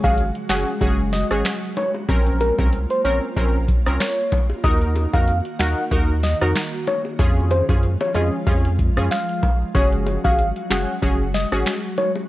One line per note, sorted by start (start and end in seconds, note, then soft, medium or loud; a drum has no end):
0.00 0.31 G#1 medium
0.00 2.06 F#3 medium
0.00 2.06 G#3 medium
0.00 0.22 C#4 medium
0.00 2.06 F#4 loud
0.00 0.22 F#4 medium
0.00 0.22 G#4 medium
0.00 0.28 F5 medium
0.00 kick loud
0.00 high bongo medium
0.17 closed hi-hat medium
0.35 closed hi-hat medium
0.49 0.65 F#1 medium
0.49 0.71 C#4 medium
0.49 0.71 F#4 medium
0.49 0.71 G#4 medium
0.49 0.74 F#5 medium
0.49 finger snap medium
0.49 snare loud
0.49 closed hi-hat medium
0.81 1.24 F#1 loud
0.81 1.03 C#4 medium
0.81 1.03 F#4 medium
0.81 1.03 G#4 loud
0.81 kick medium
0.81 closed hi-hat medium
0.81 high bongo medium
1.13 1.27 D#5 medium
1.13 snare medium
1.13 closed hi-hat medium
1.31 1.43 G#1 medium
1.31 1.50 C#4 medium
1.31 1.50 F#4 medium
1.31 1.50 G#4 medium
1.31 cross-stick medium
1.45 finger snap medium
1.45 snare loud
1.45 closed hi-hat medium
1.77 1.91 C#5 medium
1.77 closed hi-hat medium
1.77 low bongo medium
1.94 high bongo medium
2.09 2.52 A#1 loud
2.09 7.15 A#3 medium
2.09 2.54 C4 loud
2.09 2.54 C#4 medium
2.09 4.62 F4 medium
2.09 2.54 A#4 loud
2.09 kick loud
2.09 closed hi-hat medium
2.09 high bongo medium
2.27 closed hi-hat soft
2.41 2.55 A#4 medium
2.41 closed hi-hat medium
2.41 high bongo medium
2.58 2.86 C2 medium
2.58 2.77 C4 medium
2.58 2.77 C#4 medium
2.58 2.77 A#4 medium
2.58 kick loud
2.58 high bongo medium
2.73 closed hi-hat medium
2.90 3.01 C5 medium
2.90 closed hi-hat medium
3.04 3.20 A#1 medium
3.04 3.26 C4 medium
3.04 3.26 C#4 medium
3.04 3.26 A#4 medium
3.04 3.18 C#5 medium
3.04 closed hi-hat medium
3.36 3.79 A#1 loud
3.36 3.58 C4 medium
3.36 3.58 C#4 medium
3.36 3.58 A#4 loud
3.36 kick medium
3.36 closed hi-hat medium
3.36 high bongo medium
3.68 kick medium
3.68 closed hi-hat medium
3.86 3.98 C2 medium
3.86 4.05 C4 medium
3.86 4.05 C#4 medium
3.86 4.05 A#4 medium
3.86 cross-stick medium
4.00 4.47 C#5 medium
4.00 finger snap medium
4.00 snare loud
4.00 closed hi-hat medium
4.32 kick loud
4.32 closed hi-hat medium
4.32 low bongo medium
4.50 high bongo medium
4.64 5.07 D#2 loud
4.64 7.17 D#3 medium
4.64 5.09 D#4 loud
4.64 7.17 F#4 medium
4.64 5.10 F#4 medium
4.64 5.10 A#4 loud
4.64 4.78 D#5 loud
4.64 kick loud
4.64 closed hi-hat medium
4.64 high bongo medium
4.82 closed hi-hat soft
4.96 closed hi-hat medium
4.96 high bongo medium
5.14 5.42 F2 medium
5.14 5.32 D#4 medium
5.14 5.33 F#4 medium
5.14 5.33 A#4 medium
5.14 5.39 F5 medium
5.14 kick loud
5.14 high bongo medium
5.28 closed hi-hat medium
5.45 closed hi-hat medium
5.60 5.75 D#2 medium
5.60 5.81 D#4 medium
5.60 5.81 F#4 medium
5.60 5.82 A#4 medium
5.60 5.85 F#5 medium
5.60 finger snap medium
5.60 snare loud
5.60 closed hi-hat medium
5.92 6.35 D#2 loud
5.92 6.13 D#4 medium
5.92 6.13 F#4 medium
5.92 6.14 A#4 loud
5.92 kick medium
5.92 closed hi-hat medium
5.92 high bongo medium
6.23 6.37 D#5 medium
6.23 snare medium
6.23 closed hi-hat medium
6.41 6.54 F2 loud
6.41 6.60 D#4 medium
6.41 6.60 F#4 medium
6.41 6.60 A#4 medium
6.41 cross-stick medium
6.56 finger snap medium
6.56 snare loud
6.56 closed hi-hat medium
6.87 7.01 C#5 medium
6.87 closed hi-hat medium
6.87 low bongo medium
7.05 high bongo medium
7.19 7.62 F2 loud
7.19 9.72 F3 medium
7.19 12.26 G#3 medium
7.19 7.65 C#4 loud
7.19 7.65 F4 medium
7.19 9.72 F4 medium
7.19 7.65 G#4 loud
7.19 kick loud
7.19 closed hi-hat medium
7.19 high bongo medium
7.51 7.65 C5 medium
7.51 closed hi-hat medium
7.51 high bongo medium
7.69 7.97 F#2 loud
7.69 7.88 C#4 medium
7.69 7.88 F4 medium
7.69 7.88 G#4 medium
7.69 kick loud
7.69 high bongo medium
7.83 closed hi-hat medium
8.01 8.12 C#5 medium
8.01 closed hi-hat medium
8.01 high bongo medium
8.15 8.31 F2 medium
8.15 8.37 C#4 medium
8.15 8.37 F4 medium
8.15 8.37 G#4 medium
8.15 8.29 D#5 medium
8.15 closed hi-hat medium
8.15 high bongo medium
8.15 low bongo medium
8.47 8.90 F2 loud
8.47 8.68 C#4 medium
8.47 8.69 F4 medium
8.47 8.69 G#4 loud
8.47 kick medium
8.47 closed hi-hat medium
8.47 high bongo medium
8.65 closed hi-hat medium
8.79 kick medium
8.79 closed hi-hat medium
8.96 9.09 F#2 medium
8.96 9.15 C#4 medium
8.96 9.16 F4 medium
8.96 9.16 G#4 medium
8.96 cross-stick medium
9.11 9.58 F5 medium
9.11 finger snap medium
9.11 snare loud
9.11 closed hi-hat medium
9.29 closed hi-hat medium
9.43 kick loud
9.43 closed hi-hat medium
9.43 low bongo medium
9.74 10.18 F#1 loud
9.74 12.27 F#3 medium
9.74 10.20 C#4 loud
9.74 10.20 F#4 medium
9.74 12.27 F#4 medium
9.74 10.20 G#4 loud
9.74 9.89 C#5 loud
9.74 kick loud
9.74 closed hi-hat medium
9.74 high bongo medium
9.92 closed hi-hat soft
10.06 closed hi-hat medium
10.06 high bongo medium
10.24 10.52 G#1 medium
10.24 10.43 C#4 medium
10.24 10.43 F#4 medium
10.24 10.43 G#4 medium
10.24 10.49 F5 medium
10.24 kick loud
10.24 high bongo medium
10.39 closed hi-hat medium
10.56 closed hi-hat medium
10.70 10.86 F#1 loud
10.70 10.92 C#4 medium
10.70 10.92 F#4 medium
10.70 10.92 G#4 medium
10.70 10.95 F#5 medium
10.70 finger snap medium
10.70 snare loud
10.70 closed hi-hat medium
11.02 11.45 F#1 loud
11.02 11.24 C#4 loud
11.02 11.24 F#4 medium
11.02 11.24 G#4 loud
11.02 kick medium
11.02 closed hi-hat medium
11.02 high bongo medium
11.34 11.48 D#5 medium
11.34 snare medium
11.34 closed hi-hat medium
11.52 11.64 G#1 medium
11.52 11.71 C#4 medium
11.52 11.71 F#4 medium
11.52 11.71 G#4 medium
11.52 cross-stick medium
11.66 finger snap medium
11.66 snare loud
11.66 closed hi-hat medium
11.98 12.12 C#5 medium
11.98 closed hi-hat medium
11.98 low bongo medium
12.16 high bongo medium